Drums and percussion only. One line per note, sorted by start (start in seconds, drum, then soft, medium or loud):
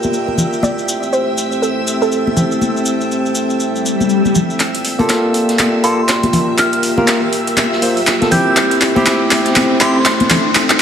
0.03 high conga medium
0.03 maracas soft
0.13 maracas soft
0.28 high conga medium
0.38 low conga medium
0.38 maracas medium
0.53 maracas soft
0.63 high conga medium
0.63 maracas soft
0.78 maracas soft
0.88 maracas medium
1.03 maracas soft
1.13 maracas soft
1.38 maracas medium
1.52 maracas soft
1.63 maracas medium
1.87 maracas medium
2.02 maracas soft
2.12 maracas soft
2.27 high conga medium
2.37 low conga medium
2.37 maracas medium
2.51 maracas soft
2.61 high conga medium
2.61 maracas soft
2.77 maracas soft
2.86 maracas medium
3.01 maracas soft
3.11 maracas soft
3.26 maracas soft
3.35 maracas medium
3.50 maracas soft
3.60 maracas medium
3.76 maracas soft
3.86 maracas medium
4.01 high conga medium
4.01 maracas soft
4.09 maracas soft
4.25 high conga medium
4.25 maracas soft
4.35 low conga medium
4.35 maracas medium
4.50 maracas soft
4.59 clap soft
4.59 closed hi-hat medium
4.75 closed hi-hat medium
4.75 closed hi-hat soft
4.85 closed hi-hat medium
4.85 open hi-hat loud
4.99 closed hi-hat soft
4.99 high conga medium
5.09 snare loud
5.09 clap soft
5.09 closed hi-hat medium
5.34 closed hi-hat medium
5.34 open hi-hat loud
5.49 snare soft
5.49 closed hi-hat medium
5.58 clap medium
5.58 closed hi-hat medium
5.58 high conga medium
5.84 closed hi-hat medium
5.84 open hi-hat loud
6.08 snare loud
6.08 clap medium
6.08 closed hi-hat medium
6.23 closed hi-hat soft
6.23 high conga medium
6.33 closed hi-hat medium
6.33 open hi-hat loud
6.33 low conga medium
6.58 clap medium
6.58 closed hi-hat medium
6.73 closed hi-hat medium
6.83 closed hi-hat medium
6.83 open hi-hat loud
6.98 high conga loud
7.07 snare loud
7.07 clap medium
7.07 closed hi-hat medium
7.33 closed hi-hat medium
7.33 open hi-hat loud
7.47 closed hi-hat medium
7.47 closed hi-hat soft
7.57 clap medium
7.57 closed hi-hat medium
7.57 high conga medium
7.72 snare medium
7.82 open hi-hat loud
7.82 open hi-hat medium
7.97 open hi-hat medium
8.07 snare loud
8.07 clap medium
8.07 closed hi-hat medium
8.22 snare soft
8.22 closed hi-hat soft
8.22 high conga medium
8.31 closed hi-hat medium
8.31 open hi-hat loud
8.31 low conga medium
8.56 clap medium
8.56 closed hi-hat medium
8.71 closed hi-hat medium
8.71 closed hi-hat soft
8.81 clap medium
8.81 closed hi-hat medium
8.81 open hi-hat loud
8.96 closed hi-hat soft
8.96 high conga loud
9.06 snare loud
9.06 clap medium
9.06 closed hi-hat medium
9.31 clap medium
9.31 closed hi-hat medium
9.31 open hi-hat loud
9.46 snare soft
9.46 closed hi-hat medium
9.56 clap medium
9.56 closed hi-hat medium
9.56 high conga medium
9.81 clap medium
9.81 closed hi-hat medium
9.81 open hi-hat loud
10.05 snare loud
10.05 clap medium
10.05 closed hi-hat medium
10.20 closed hi-hat soft
10.20 high conga medium
10.30 clap medium
10.30 closed hi-hat medium
10.30 open hi-hat loud
10.30 low conga medium
10.55 clap medium
10.55 closed hi-hat medium
10.70 clap medium
10.70 closed hi-hat medium